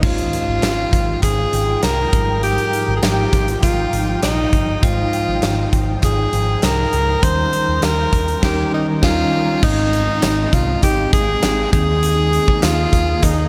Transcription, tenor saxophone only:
0, 0, Header, 1, 2, 480
1, 0, Start_track
1, 0, Key_signature, -4, "major"
1, 0, Tempo, 600000
1, 24, Time_signature, 4, 2, 24, 8
1, 10788, End_track
2, 0, Start_track
2, 0, Title_t, "Tenor saxophone"
2, 0, Program_c, 0, 66
2, 26, Note_on_c, 0, 65, 97
2, 980, Note_off_c, 0, 65, 0
2, 985, Note_on_c, 0, 68, 96
2, 1432, Note_off_c, 0, 68, 0
2, 1466, Note_on_c, 0, 70, 111
2, 1913, Note_off_c, 0, 70, 0
2, 1945, Note_on_c, 0, 67, 110
2, 2339, Note_off_c, 0, 67, 0
2, 2373, Note_on_c, 0, 68, 69
2, 2423, Note_on_c, 0, 67, 100
2, 2435, Note_off_c, 0, 68, 0
2, 2900, Note_off_c, 0, 67, 0
2, 2905, Note_on_c, 0, 65, 88
2, 3352, Note_off_c, 0, 65, 0
2, 3387, Note_on_c, 0, 63, 91
2, 3868, Note_on_c, 0, 65, 95
2, 3880, Note_off_c, 0, 63, 0
2, 4610, Note_off_c, 0, 65, 0
2, 4834, Note_on_c, 0, 68, 89
2, 5307, Note_on_c, 0, 70, 104
2, 5319, Note_off_c, 0, 68, 0
2, 5788, Note_on_c, 0, 72, 118
2, 5800, Note_off_c, 0, 70, 0
2, 6262, Note_off_c, 0, 72, 0
2, 6267, Note_on_c, 0, 70, 100
2, 6714, Note_off_c, 0, 70, 0
2, 6749, Note_on_c, 0, 67, 86
2, 6970, Note_off_c, 0, 67, 0
2, 6990, Note_on_c, 0, 63, 80
2, 7097, Note_off_c, 0, 63, 0
2, 7229, Note_on_c, 0, 65, 106
2, 7674, Note_off_c, 0, 65, 0
2, 7707, Note_on_c, 0, 63, 108
2, 8427, Note_on_c, 0, 65, 92
2, 8439, Note_off_c, 0, 63, 0
2, 8662, Note_off_c, 0, 65, 0
2, 8667, Note_on_c, 0, 67, 99
2, 8889, Note_off_c, 0, 67, 0
2, 8904, Note_on_c, 0, 68, 108
2, 9352, Note_off_c, 0, 68, 0
2, 9381, Note_on_c, 0, 68, 110
2, 10105, Note_on_c, 0, 65, 103
2, 10117, Note_off_c, 0, 68, 0
2, 10584, Note_on_c, 0, 63, 89
2, 10596, Note_off_c, 0, 65, 0
2, 10788, Note_off_c, 0, 63, 0
2, 10788, End_track
0, 0, End_of_file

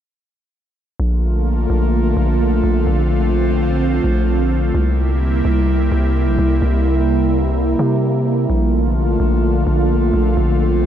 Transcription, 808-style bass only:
0, 0, Header, 1, 2, 480
1, 0, Start_track
1, 0, Tempo, 468750
1, 1020, Time_signature, 4, 2, 24, 8
1, 11121, End_track
2, 0, Start_track
2, 0, Title_t, "808-style bass"
2, 0, Program_c, 0, 38
2, 1020, Note_on_c, 0, 34, 108
2, 1711, Note_off_c, 0, 34, 0
2, 1740, Note_on_c, 0, 34, 107
2, 2200, Note_off_c, 0, 34, 0
2, 2220, Note_on_c, 0, 34, 103
2, 2681, Note_off_c, 0, 34, 0
2, 2700, Note_on_c, 0, 34, 104
2, 2930, Note_off_c, 0, 34, 0
2, 2940, Note_on_c, 0, 34, 113
2, 4099, Note_off_c, 0, 34, 0
2, 4139, Note_on_c, 0, 34, 103
2, 4831, Note_off_c, 0, 34, 0
2, 4860, Note_on_c, 0, 36, 109
2, 5551, Note_off_c, 0, 36, 0
2, 5580, Note_on_c, 0, 36, 107
2, 6040, Note_off_c, 0, 36, 0
2, 6059, Note_on_c, 0, 36, 101
2, 6420, Note_on_c, 0, 34, 99
2, 6435, Note_off_c, 0, 36, 0
2, 6534, Note_off_c, 0, 34, 0
2, 6540, Note_on_c, 0, 36, 108
2, 6770, Note_off_c, 0, 36, 0
2, 6780, Note_on_c, 0, 36, 112
2, 7939, Note_off_c, 0, 36, 0
2, 7980, Note_on_c, 0, 48, 99
2, 8671, Note_off_c, 0, 48, 0
2, 8700, Note_on_c, 0, 34, 109
2, 9391, Note_off_c, 0, 34, 0
2, 9420, Note_on_c, 0, 34, 107
2, 9880, Note_off_c, 0, 34, 0
2, 9900, Note_on_c, 0, 34, 99
2, 10361, Note_off_c, 0, 34, 0
2, 10380, Note_on_c, 0, 34, 103
2, 10610, Note_off_c, 0, 34, 0
2, 10620, Note_on_c, 0, 34, 111
2, 11121, Note_off_c, 0, 34, 0
2, 11121, End_track
0, 0, End_of_file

